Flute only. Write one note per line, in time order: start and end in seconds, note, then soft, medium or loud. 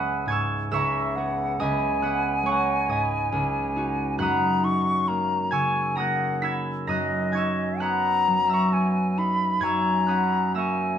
0.00 0.46 G#5 medium
0.73 1.17 E5 medium
1.16 1.61 F#5 medium
1.60 4.19 G#5 medium
4.20 4.66 A#5 medium
4.64 5.10 C#6 medium
5.08 5.53 A#5 medium
5.52 5.98 G#5 medium
5.97 6.60 F#5 medium
6.87 7.83 D#5 medium
7.81 8.75 A#5 medium
8.73 9.20 G#5 medium
9.18 9.65 B5 medium
9.63 10.56 A#5 medium
10.57 10.98 G#5 medium